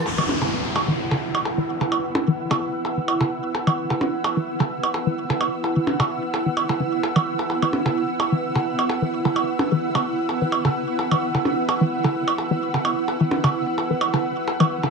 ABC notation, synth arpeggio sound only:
X:1
M:4/4
L:1/16
Q:"Swing 16ths" 1/4=129
K:Clyd
V:1 name="Synth arpeggio sound" clef=bass
z E, z D, z3 E, z D, z3 E, z D, | z3 E, z D, z3 E, z D, z3 E, | z D, z3 E, z D, z3 E, z D, z2 | z E, z D, z3 E, z D, D, z2 E, z2 |
z E, z D, z3 E, z D, z3 E, z D, | z3 E, z D, z3 E, z D, z3 E, | z D, z3 E, z D, z3 E, z D, z2 | z E, z D, z3 E, z D, z3 E, z D, |]